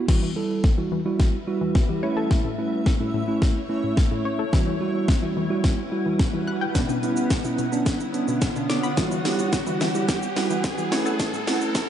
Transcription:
0.08 E3 G3 E4 F#4 B4 E5, kick, snare, crash, riser
0.22 E3
0.36 G3 E4 A4
0.64 kick, snare
0.78 E3 G3 E4 F#4
0.92 E3
1.05 G3 E4 F#4
1.20 kick, snare
1.47 G3 E4 F#4
1.61 E3
1.75 kick, snare
1.89 E3 G3 E4 G4
2.03 A3 C#4 E4 C#5
2.17 A4
2.31 A2, kick, snare
2.44 A2
2.58 A3 C#4 E4
2.86 kick, snare
3.00 A2 A3 C#4 E4
3.14 A2
3.28 A3 C#4 E4
3.42 kick, snare
3.69 A3 C#4 E4
3.84 A2
3.97 kick, snare
4.11 A2 A3 C#4 E4
4.25 C#5
4.39 A4
4.53 E3 G3 E4 F#4 B4 F#5, kick, snare
4.67 E3
4.80 G3 E4 F#4
5.08 kick, snare
5.22 E3 G3 E4 F#4
5.36 E3
5.50 G3 E4 F#4
5.64 kick, snare
5.91 G3 E4 F#4
6.06 E3
6.19 kick, snare
6.33 E3 G3 E4 F#4
6.47 F#6
6.61 G5
6.75 B2 D3 B3 C#4 D4 C#5 F#5, kick, snare, closed hi-hat, shaker
6.89 B2, shaker
7.03 B3 C#4 E4, closed hi-hat, shaker
7.17 shaker
7.30 kick, snare, closed hi-hat, shaker
7.44 B2 B3 C#4 E4, shaker
7.58 B2, closed hi-hat, shaker
7.72 B3 C#4 D4, shaker
7.86 kick, snare, closed hi-hat, shaker
8.00 shaker
8.14 B3 C#4 D4, closed hi-hat, shaker
8.28 B2, shaker
8.42 kick, snare, closed hi-hat, shaker
8.56 B2 B3 C#4 D4, shaker
8.70 D6, snare, closed hi-hat, shaker
8.83 B5, shaker
8.97 E3 G3 E4 F#4 B4, kick, snare, closed hi-hat, shaker
9.11 E3, shaker
9.25 G3 E4 G4, snare, open hi-hat, shaker
9.39 shaker
9.53 kick, snare, closed hi-hat, shaker
9.67 E3 G3 E4 F#4, shaker
9.80 E3, snare, open hi-hat, shaker
9.95 G3 E4 G4, shaker
10.08 kick, snare, closed hi-hat, shaker
10.22 shaker
10.36 G3 E4 F#4, snare, open hi-hat, shaker
10.50 E3, shaker
10.64 kick, snare, closed hi-hat, shaker
10.78 E3 G3 E4 F#4, shaker
10.91 A3 C#4 E4 C#5 E5, snare, open hi-hat, shaker
11.06 A4, shaker
11.19 A2, kick, snare, closed hi-hat, shaker
11.33 A2, shaker
11.47 A3 C#4 E4, snare, open hi-hat, shaker
11.61 shaker
11.75 kick, snare, closed hi-hat, shaker

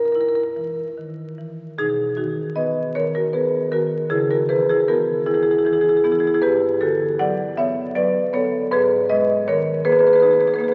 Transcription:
Already playing: F#2 D#4
0.00 A#4
0.06 A#4
0.12 E4 A#4
0.21 A#4
0.28 A#4
0.35 A#4
0.44 A#4
0.56 E3
0.98 D#3
1.38 E3
1.78 B2 D#4 G#4
2.17 D#3 D#4 F#4
2.56 B3 B4 D#5
2.95 D#3 A#4 C#5
3.15 F#4 A#4
3.33 B3 G#4 B4
3.72 D#3 F#4 A#4
4.10 C#3 E4 G#4
4.31 F#4 A#4
4.49 E3 G#4 B4
4.69 E4 G#4
4.88 E3 B3 F#4 A#4
5.26 E2 E4 G#4
5.34 E4 G#4
5.43 E4 G#4
5.51 E4 G#4
5.58 E4 G#4
5.65 E3 E4 G#4
5.73 E4 G#4
5.81 E4 G#4
5.89 E4 G#4
5.96 E4 G#4
6.04 E3 B3 E4 G#4
6.12 E4 G#4
6.19 E4 G#4
6.27 E4 G#4
6.34 E4 G#4
6.42 G2 G4 B4
6.81 D3 F#4 A4
7.19 F#3 D5 F#5
7.57 B3 C#5 E5
7.95 F#3 B4 D5
8.33 B3 A4 C#5
8.71 G#2 G#4 B4
9.10 G#3 B4 D#5
9.48 D#3 A#4 C#5
9.85 A#3 G#4 B4
9.92 G#4 B4
9.99 G#4 B4
10.07 G#4 B4
10.13 G#4 B4
10.20 D#4 G#4 B4
10.27 B4
10.31 G#4 B4
10.40 G#4 B4
10.47 G#4 B4
10.54 G#4 B4
10.59 A#3 B4
10.64 G#4
10.68 B4

